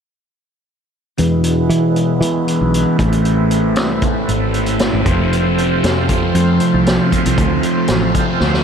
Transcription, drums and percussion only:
1.18 closed hi-hat
1.44 closed hi-hat
1.70 closed hi-hat
1.96 closed hi-hat
2.22 closed hi-hat
2.48 closed hi-hat
2.74 closed hi-hat
2.99 kick, closed hi-hat
3.12 closed hi-hat
3.25 closed hi-hat
3.51 closed hi-hat
3.76 snare, closed hi-hat
4.02 kick, closed hi-hat
4.29 closed hi-hat
4.54 closed hi-hat
4.66 closed hi-hat
4.79 snare, closed hi-hat
5.06 kick, closed hi-hat
5.33 closed hi-hat
5.58 closed hi-hat
5.84 snare, closed hi-hat
6.09 kick, closed hi-hat
6.35 closed hi-hat
6.60 closed hi-hat
6.86 snare, closed hi-hat
7.12 kick, closed hi-hat
7.26 closed hi-hat
7.38 kick, closed hi-hat
7.63 closed hi-hat
7.88 snare, closed hi-hat
8.15 kick, closed hi-hat
8.40 snare
8.54 snare

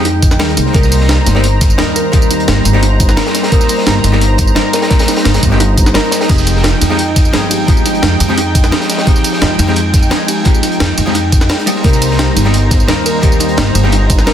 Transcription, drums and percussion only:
0.05 closed hi-hat
0.22 kick, closed hi-hat, tambourine
0.31 snare, tambourine
0.39 snare, closed hi-hat
0.49 closed hi-hat
0.57 closed hi-hat, tambourine
0.66 snare
0.74 kick, closed hi-hat
0.83 snare, tambourine
0.92 closed hi-hat, open hi-hat, tambourine
1.00 snare
1.09 snare, closed hi-hat
1.26 snare, closed hi-hat, tambourine
1.35 snare
1.44 closed hi-hat
1.61 kick, snare, closed hi-hat, tambourine
1.70 tambourine
1.78 snare, closed hi-hat
1.96 closed hi-hat, tambourine
2.13 kick, closed hi-hat
2.22 tambourine
2.31 closed hi-hat, tambourine
2.40 closed hi-hat
2.48 snare, closed hi-hat
2.65 closed hi-hat, tambourine
2.75 snare
2.83 closed hi-hat
3.00 kick, closed hi-hat, tambourine
3.09 snare, tambourine
3.17 snare, closed hi-hat
3.25 snare, closed hi-hat
3.35 snare, closed hi-hat, tambourine
3.43 snare, closed hi-hat
3.52 kick, closed hi-hat
3.61 snare, tambourine
3.68 closed hi-hat, open hi-hat, tambourine
3.78 snare
3.86 snare, closed hi-hat
4.04 snare, closed hi-hat, tambourine
4.12 snare
4.21 closed hi-hat
4.38 kick, closed hi-hat, tambourine
4.47 tambourine
4.55 snare, closed hi-hat
4.73 snare, closed hi-hat, tambourine
4.82 snare, closed hi-hat
4.90 kick, snare, closed hi-hat
4.99 snare, closed hi-hat, tambourine
5.08 snare, closed hi-hat, tambourine
5.16 snare, closed hi-hat
5.24 snare, closed hi-hat
5.34 snare, closed hi-hat, tambourine
5.43 kick, closed hi-hat, tambourine
5.52 snare
5.60 closed hi-hat
5.77 kick, closed hi-hat, tambourine
5.86 snare, tambourine
5.94 snare, closed hi-hat
6.04 closed hi-hat
6.11 snare, closed hi-hat, tambourine
6.21 snare, closed hi-hat
6.29 kick, closed hi-hat, crash
6.38 snare, tambourine
6.47 closed hi-hat, open hi-hat, ride bell, tambourine
6.56 snare
6.64 snare, closed hi-hat
6.81 snare, closed hi-hat, ride bell, tambourine
6.90 snare
6.99 closed hi-hat
7.16 kick, snare, closed hi-hat, ride bell, tambourine
7.25 tambourine
7.33 snare, closed hi-hat
7.51 closed hi-hat, ride bell, tambourine
7.68 kick, closed hi-hat
7.77 tambourine
7.86 closed hi-hat, ride bell, tambourine
7.95 closed hi-hat
8.03 snare, closed hi-hat
8.20 closed hi-hat, ride bell, tambourine
8.29 snare
8.38 closed hi-hat
8.55 kick, closed hi-hat, ride bell, tambourine
8.64 snare, tambourine
8.72 snare, closed hi-hat
8.80 snare, closed hi-hat
8.90 snare, closed hi-hat, ride bell, tambourine
8.98 snare, closed hi-hat
9.07 kick, closed hi-hat
9.16 snare, tambourine
9.24 closed hi-hat, open hi-hat, ride bell, tambourine
9.33 snare
9.41 snare, closed hi-hat
9.58 snare, closed hi-hat, ride bell, tambourine
9.68 snare
9.76 closed hi-hat
9.93 kick, snare, closed hi-hat, ride bell, tambourine
10.03 tambourine
10.11 snare, closed hi-hat
10.28 closed hi-hat, ride bell, tambourine
10.45 kick, closed hi-hat
10.54 tambourine
10.63 closed hi-hat, ride bell, tambourine
10.72 closed hi-hat
10.80 snare, closed hi-hat
10.98 closed hi-hat, ride bell, tambourine
11.07 snare
11.15 closed hi-hat
11.32 kick, closed hi-hat, ride bell, tambourine
11.41 snare, tambourine
11.49 snare, closed hi-hat
11.59 closed hi-hat
11.67 closed hi-hat, ride bell, tambourine
11.76 snare
11.84 kick, closed hi-hat
11.93 snare, tambourine
12.02 closed hi-hat, open hi-hat, ride bell, tambourine
12.11 snare
12.19 snare, closed hi-hat
12.36 snare, closed hi-hat, ride bell, tambourine
12.45 snare
12.54 closed hi-hat
12.71 kick, snare, closed hi-hat, ride bell, tambourine
12.80 tambourine
12.88 snare, closed hi-hat
13.06 closed hi-hat, ride bell, tambourine
13.23 kick, closed hi-hat
13.32 tambourine
13.40 closed hi-hat, ride bell, tambourine
13.49 closed hi-hat
13.57 snare, closed hi-hat
13.75 closed hi-hat, ride bell, tambourine
13.84 snare
13.92 closed hi-hat
14.10 kick, closed hi-hat, ride bell, tambourine
14.19 snare, tambourine
14.27 snare, closed hi-hat

